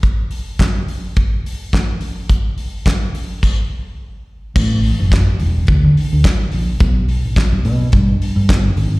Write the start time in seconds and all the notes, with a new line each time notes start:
0.03 kick, closed hi-hat
0.31 open hi-hat
0.59 kick, snare, clap, closed hi-hat
0.88 open hi-hat
1.16 kick, closed hi-hat
1.46 open hi-hat
1.73 kick, snare, clap, closed hi-hat
2.01 open hi-hat
2.29 kick, closed hi-hat
2.58 open hi-hat
2.86 kick, snare, clap, closed hi-hat
3.15 open hi-hat
3.43 kick, crash
4.56 A1, kick, crash
4.83 open hi-hat
5.00 F#1
5.12 kick, snare, clap, closed hi-hat
5.39 E1, open hi-hat
5.67 D2, kick, closed hi-hat
5.85 D3
5.97 open hi-hat
6.13 D2
6.24 kick, snare, clap, closed hi-hat
6.52 A#1, open hi-hat
6.80 B1, kick, closed hi-hat
7.09 open hi-hat
7.24 A1
7.36 kick, snare, clap, closed hi-hat
7.52 B1
7.65 B2, open hi-hat
7.92 G2, kick, closed hi-hat
8.22 open hi-hat
8.36 G2
8.49 G1, kick, snare, clap, closed hi-hat
8.77 G#1, open hi-hat